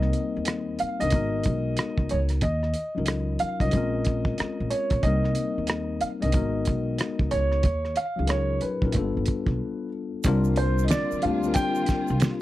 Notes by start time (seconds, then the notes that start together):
Already playing: C2 G3 A#3 C4 D#4 A#4 D#5
0.02 cross-stick
0.13 closed hi-hat
0.37 D#2
0.45 cross-stick, closed hi-hat
0.79 F5, muted upright bass stroke, closed hi-hat
1.00 C2 G3 C4 D4 D#4 D#5, closed hi-hat
1.04 A#4
1.10 G#1 G#3 B3 D#4, kick, closed hi-hat
1.15 F#4 A#4
1.44 B1, kick, cross-stick, closed hi-hat
1.77 cross-stick, closed hi-hat
1.98 C#2, kick
2.09 C#2 C#5, closed hi-hat
2.29 cross-stick, closed hi-hat
2.41 D#2 D#5, kick, closed hi-hat
2.63 cross-stick
2.74 closed hi-hat
2.95 C#2 F#3 C#4 D#4 F4
2.99 A#4
3.06 cross-stick, closed hi-hat
3.39 F5, muted upright bass stroke, closed hi-hat
3.60 C2 F#3 C#4 D#4 F4 D#5, kick, closed hi-hat
3.64 A#4
3.71 A#1 G#3 C4 C#4, kick, closed hi-hat
3.76 F4 A#4
4.05 kick, cross-stick, closed hi-hat
4.25 kick
4.38 muted upright bass stroke, cross-stick, closed hi-hat
4.60 A#1
4.70 C#5, closed hi-hat
4.90 A#1, kick, cross-stick, closed hi-hat
5.03 C2 G3 A#3 C4 D#4 D#5, kick, closed hi-hat
5.07 A#4
5.24 cross-stick
5.35 closed hi-hat
5.58 D#2
5.67 cross-stick, closed hi-hat
6.01 F5, muted upright bass stroke, closed hi-hat
6.21 C2 G3 C4 D4 D#4 D#5, closed hi-hat
6.25 A#4
6.32 G#1 G#3 B3 D#4 F#4, kick, closed hi-hat
6.37 A#4
6.65 B1, kick, cross-stick, closed hi-hat
6.98 cross-stick, closed hi-hat
7.19 C#2, kick
7.31 C#2 C#5, closed hi-hat
7.52 cross-stick
7.63 D#2, kick, closed hi-hat
7.85 cross-stick
7.96 F5, closed hi-hat
8.16 C#2 F#3 C#4 D#4 F4
8.21 G#4
8.27 A#4 C#5, cross-stick, closed hi-hat
8.61 B4, muted upright bass stroke, closed hi-hat
8.82 A#1 F#3 C#4 D#4 F4, kick
8.86 A#4
8.92 G1 G3 A#3, kick, closed hi-hat
8.97 D4 F4 A4
9.02 B3
9.17 G1
9.26 kick, closed hi-hat
9.46 B1, kick
10.23 C2 D3 G3 A#3 C4 D4 F4, kick, closed hi-hat, shaker
10.28 F4 A#4
10.44 shaker
10.56 C5, closed hi-hat
10.78 shaker
10.84 D#5, closed hi-hat
10.90 D5, finger snap, snare, shaker
11.11 muted upright bass stroke, shaker
11.22 D2 G3 C4 D4 F5, closed hi-hat
11.26 F4 G4
11.43 G3 C4 D4 F4, shaker
11.48 A#4
11.54 G5, kick, closed hi-hat, shaker
11.75 shaker
11.86 muted upright bass stroke, kick, snare, closed hi-hat, shaker
12.08 C2, shaker
12.20 finger snap, snare, closed hi-hat, shaker